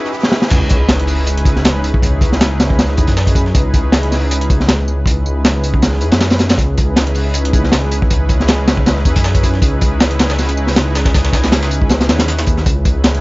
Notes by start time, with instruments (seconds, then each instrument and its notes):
Already playing: riser
0.13 analog synth pad C#4 D#4 E4 G#4 B4
0.23 snare
0.32 snare
0.42 snare
0.50 detuned saw bass C#2, analog synth pad C#4 D#4 E4 G#4 B4, kick, closed hi-hat, crash, tambourine, sub drop
0.69 kick, closed hi-hat, tambourine
0.89 snare, closed hi-hat, tambourine
1.00 closed hi-hat
1.07 open hi-hat, tambourine
1.27 closed hi-hat, tambourine
1.38 closed hi-hat
1.45 kick, closed hi-hat, tambourine
1.56 snare
1.65 analog synth pad C#4 D#4 E4 G#4 B4, snare, closed hi-hat, tambourine
1.84 closed hi-hat, tambourine
1.94 kick
2.03 detuned saw bass C#2, analog synth pad C#4 D#4 E4 G#4 B4, kick, closed hi-hat, tambourine
2.21 kick, closed hi-hat, tambourine
2.32 snare
2.41 snare, closed hi-hat, tambourine
2.60 snare, closed hi-hat, tambourine
2.70 kick
2.79 snare, closed hi-hat, tambourine
2.89 snare
2.97 detuned saw bass E2, kick, closed hi-hat, tambourine
3.07 detuned saw bass F#2, kick, snare, closed hi-hat
3.16 analog synth pad C#4 D#4 E4 G#4 B4, snare, tambourine
3.27 kick, closed hi-hat
3.35 kick, closed hi-hat, tambourine
3.46 snare
3.54 detuned saw bass C#2, analog synth pad C#4 D#4 E4 G#4 B4, kick, closed hi-hat, tambourine
3.74 kick, closed hi-hat, tambourine
3.92 snare, closed hi-hat, tambourine
4.03 closed hi-hat
4.12 snare, open hi-hat, tambourine
4.31 closed hi-hat, tambourine
4.41 closed hi-hat
4.50 kick, closed hi-hat, tambourine
4.60 snare
4.68 analog synth pad C#4 D#4 E4 G#4 B4, snare, closed hi-hat, tambourine
4.88 tambourine
5.06 detuned saw bass C#2, analog synth pad C#4 D#4 E4 G#4 B4, kick, closed hi-hat, tambourine
5.26 tambourine
5.45 snare, closed hi-hat, tambourine
5.64 closed hi-hat, tambourine
5.74 kick
5.82 snare, closed hi-hat, tambourine
5.93 snare
6.01 detuned saw bass E2, closed hi-hat, tambourine
6.12 detuned saw bass F#2, snare, closed hi-hat
6.21 snare, closed hi-hat, tambourine
6.30 snare, closed hi-hat
6.39 snare, closed hi-hat, tambourine
6.49 snare, closed hi-hat, tambourine
6.58 detuned saw bass C#2, analog synth pad C#4 D#4 E4 G#4 B4, kick, closed hi-hat, tambourine
6.78 kick, closed hi-hat, tambourine
6.96 snare, closed hi-hat, tambourine
7.07 closed hi-hat
7.15 open hi-hat, tambourine
7.34 closed hi-hat, tambourine
7.45 closed hi-hat
7.53 kick, closed hi-hat, tambourine
7.64 snare
7.72 analog synth pad C#4 D#4 E4 G#4 B4, snare, closed hi-hat, tambourine
7.91 closed hi-hat, tambourine
8.02 kick
8.10 detuned saw bass C#2, analog synth pad C#4 D#4 E4 G#4 B4, kick, closed hi-hat, tambourine
8.29 kick, closed hi-hat, tambourine
8.40 snare
8.48 snare, closed hi-hat, tambourine
8.68 snare, closed hi-hat, tambourine
8.77 kick
8.86 snare, closed hi-hat, tambourine
8.97 snare
9.05 detuned saw bass E2, kick, closed hi-hat, tambourine
9.16 detuned saw bass F#2, kick, snare, closed hi-hat
9.24 analog synth pad C#4 D#4 E4 G#4 B4, snare, tambourine
9.35 kick, closed hi-hat
9.43 kick, closed hi-hat, tambourine
9.54 snare
9.62 detuned saw bass C#2, analog synth pad C#4 D#4 E4 G#4 B4, kick, closed hi-hat, tambourine
9.81 kick, closed hi-hat, tambourine
10.00 snare, closed hi-hat, tambourine
10.11 closed hi-hat
10.19 snare, closed hi-hat, tambourine
10.30 snare, tambourine
10.38 snare, open hi-hat, tambourine
10.49 closed hi-hat
10.57 tambourine
10.67 snare, open hi-hat
10.76 analog synth pad C#4 D#4 E4 G#4 B4, snare, closed hi-hat, tambourine
10.95 snare, closed hi-hat, tambourine
11.05 kick, snare, tambourine
11.14 detuned saw bass C#2, analog synth pad C#4 D#4 E4 G#4 B4, kick, snare, closed hi-hat, tambourine
11.25 snare, tambourine
11.33 kick, snare, closed hi-hat, tambourine
11.44 snare, tambourine
11.52 snare, closed hi-hat, tambourine
11.63 snare, tambourine
11.71 closed hi-hat, tambourine
11.82 kick
11.89 snare, closed hi-hat, tambourine
12.01 snare, closed hi-hat
12.09 detuned saw bass D#2, snare, closed hi-hat, tambourine
12.19 snare, closed hi-hat, tambourine
12.28 snare, closed hi-hat, tambourine
12.38 snare, tambourine
12.46 detuned saw bass D#2, kick, closed hi-hat, tambourine
12.57 snare
12.66 detuned saw bass C#2, analog synth pad C#4 D#4 E4 G#4 B4, kick, closed hi-hat, tambourine
12.85 kick, closed hi-hat, tambourine
13.04 snare, closed hi-hat, tambourine
13.15 closed hi-hat